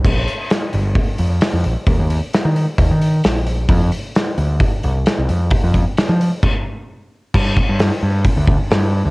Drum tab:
CC |x-------|--------|--------|----x---|
HH |-ooooooo|oooooooo|oooooooo|oooo----|
SD |--o---o-|--o---o-|--o---o-|--o-----|
BD |o---o---|o---o---|o---o---|oo--o---|

CC |x-------|
HH |--o-o-o-|
SD |--o---o-|
BD |oo--oo--|